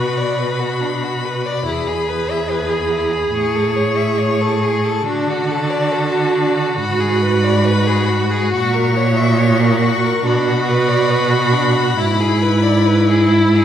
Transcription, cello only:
Already playing: B2
1.68 E2
3.34 A2
5.06 D3
6.77 G#2
8.52 A#2
10.24 B2
11.98 G#2

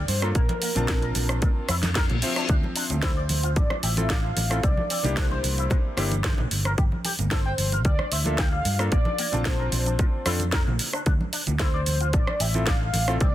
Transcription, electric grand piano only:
0.22 A#3 D4 F4 A4
0.75 C4 D4 F4 A5
2.22 F3 C4 C5 E5
3.97 C4 E4 F4 A4
4.50 C4 E4 F4 A4
5.03 A#3 D4 E4 G4
5.97 A#3 D4 E4 G4
8.25 A#3 D4 F4 A4
8.79 A#3 D4 F4 A4
9.32 C4 D4 F4 A5
10.25 C4 D4 F4 A4
12.55 C4 E4 F4 A4
13.08 C4 E4 F4 A4

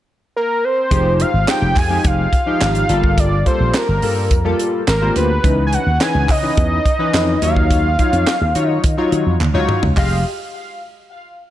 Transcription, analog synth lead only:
0.36 A#4
0.64 C5
1.21 F5
1.49 G5
1.78 G#5
2.06 F5
3.19 D5
3.47 C5
3.76 A#4
4.89 A#4
5.17 B4
5.67 G#5
5.74 F#5
6.02 G#5
6.30 D#5
7.43 F5
8.69 D#5
9.98 F5

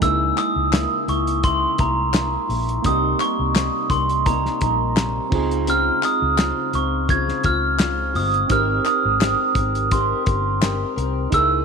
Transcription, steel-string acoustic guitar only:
0.02 C#3 G#3 A#3 E4
0.37 G#3 A#3 E4
0.72 C#3 G#3 A#3 E4
1.08 G#3 A#3 E4
1.43 C#3 G#3 A#3 E4
1.78 G#3 A#3 E4
2.14 G#3 A#3 E4
2.48 G#3 A#3 E4
2.84 C3 G3 A#3 D#4
3.19 G3 A#3 D#4
3.54 C3 G3 A#3 D#4
3.90 G3 A#3 D#4
4.26 C3 G3 A#3 D#4
4.61 G3 A#3 D#4
4.96 C3 G3 A#3 D#4
5.30 G#3 C4 F4
5.66 C#3 G#3 C4 F4
6.02 G#3 C4 F4
6.37 C#3 G#3 C4 F4
6.72 G#3 C4 F4
7.08 C#3 G#3 C4 F4
7.44 G#3 C4 F4
7.78 C#3 G#3 C4 F4
8.14 G#3 C4 F4
8.49 G#3 C4 G4 A#4
8.85 C4 G4 A#4
9.20 G#3 C4 G4 A#4
9.56 C4 G4 A#4
9.91 G#3 C4 G4 A#4
10.26 C4 G4 A#4
10.61 G#3 C4 G4 A#4
10.96 C4 G4 A#4
11.32 C#3 A#3 E4 G#4

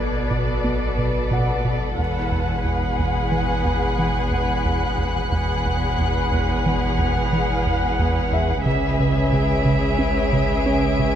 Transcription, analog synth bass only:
Already playing: B3
0.31 B2
0.64 B3
0.98 B2
1.31 B2
1.65 B2
1.98 E2
2.32 E2
2.65 E2
2.99 E2
3.32 E3
3.65 E2
3.98 E3
4.31 E2
4.65 E2
4.98 E2
5.32 E2
5.66 E2
5.99 E2
6.32 E2
6.66 E3
6.99 E2
7.33 E3
7.67 E2
7.99 E2
8.32 E2
8.66 C#3
9.00 C#3
9.33 C#3
9.65 C#3
9.99 C#4
10.33 C#3
10.66 C#4
10.99 C#3

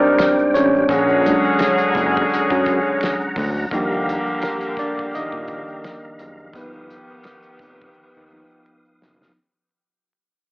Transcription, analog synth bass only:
0.56 A1
0.90 A#1
1.45 F#1
1.96 F#1
2.33 F#2
2.52 F#2
3.37 D2
3.72 D#2
4.28 A#1
5.14 A#1
5.33 A#1
6.20 F#1
6.54 G1
7.10 F1
7.60 F1
7.97 D#2
8.17 D#2
9.03 F#1

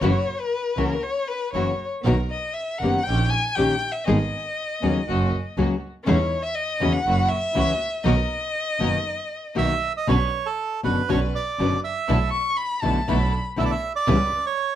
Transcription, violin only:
0.01 C#5
0.40 B4
0.78 A#4
1.03 C#5
1.28 B4
1.53 C#5
2.30 D#5
2.54 E5
2.79 F#5
3.04 G5
3.30 G#5
3.55 G5
3.92 E5
4.04 D#5
6.06 C#5
6.43 E5
6.55 D#5
6.93 F#5
7.29 E5
8.04 D#5
12.31 C#6
12.57 B5
12.82 A5
13.09 B5

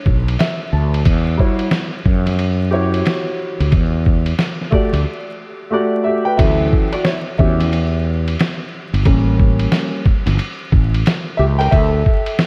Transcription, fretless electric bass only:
0.06 B1
0.73 D2
1.06 E2
2.05 F#2
3.60 D2
3.72 E2
4.93 D2
6.39 D2
7.39 E2
8.93 G1
9.05 A1
10.27 G1
10.72 A1
11.39 C#2
11.72 D2

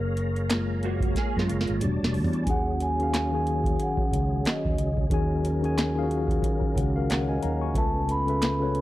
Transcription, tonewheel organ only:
Already playing: G#4 C#5 F5 A#5
1.82 G3 D5 A5
2.48 F#3 C#4 G#4
5.11 A#4
7.74 C#3 A3 B3

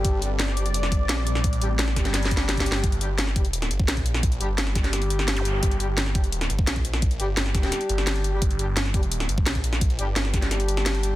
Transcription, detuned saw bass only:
0.05 G1
0.66 F#1
0.92 G1
1.09 A#1
1.62 A1
1.96 G1
2.49 G1
2.84 G1
3.71 G1
3.88 A#1
4.41 G1
5.63 G1
6.50 G1
6.67 A#1
7.20 G1
7.37 G1
7.89 G1
8.42 G1
9.29 G1
9.46 A#1
9.99 G1

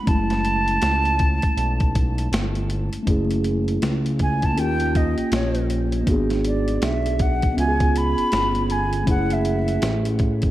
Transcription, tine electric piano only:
0.03 A3 C#4
0.08 G#3 E4
3.03 A3 C#4
3.08 E4 G#4
4.53 A#3 C#4
4.58 F4 G4
6.03 A#3 D4
6.09 B3 F#4 G#4
7.54 B3 C#4
7.59 F4 F#4
7.68 G#4
9.03 A3 C#4
9.08 E4 G#4

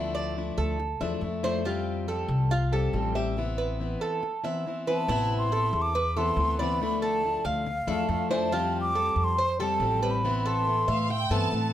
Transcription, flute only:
4.88 A5
5.38 C6
5.82 D6
6.18 C6
6.60 B5
7.02 A5
7.46 F5
8.32 A5
8.81 D6
9.24 C6
9.61 A5
10.11 B5
10.46 C6

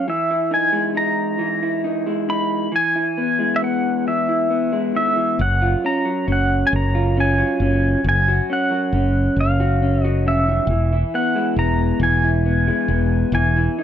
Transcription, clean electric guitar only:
0.08 E3
0.31 E4
0.51 D#4
0.72 G#3 E4
0.95 D#4
1.39 E3
1.63 E4
1.84 D#4
2.06 G#3 E4
2.29 D#4
2.72 E3
2.96 E4
3.18 B3
3.39 G#3 E4
3.62 B3
4.07 E3
4.29 E4
4.50 B3
4.72 G#3 E4
4.95 D#3
5.17 E3
5.39 F#2
5.62 F4
5.84 C#4
6.05 F#3
6.27 C#4
6.71 F#2
6.95 F4
7.17 C#4
7.38 F#3 F4
7.62 C#4
8.05 F#2
8.28 F#4
8.50 C#4
8.71 F#3 F#4
8.94 C#4
9.60 F#4
9.82 C#4
10.04 F#3 F#4
10.26 C#3
10.48 D#3
10.70 E3
10.92 E4
11.14 B3
11.35 G#3 E4
11.58 B3
12.01 E3
12.24 E4
12.46 B3
12.67 G#3 E4
12.90 B3
13.33 E3
13.56 E4
13.78 D#4

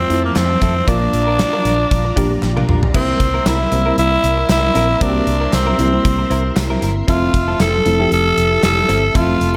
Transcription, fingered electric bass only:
0.10 F2
0.36 F2
0.62 F2
0.88 A#1
1.13 A#1
1.65 A#1
1.91 A#1
2.17 A#1
2.43 A#1
2.68 A#1
2.95 C2
3.20 C2
3.46 C2
3.72 C2
3.98 C2
4.24 C2
4.49 C2
4.75 A#1
5.01 C2
5.27 C2
5.53 C2
5.79 C2
6.05 C2
6.31 C2
6.56 C2
6.82 G1
7.08 F1
7.34 F1
7.60 F1
7.86 F1
8.12 F1
8.38 F1
8.63 F1
8.89 G1
9.15 F1
9.41 F1

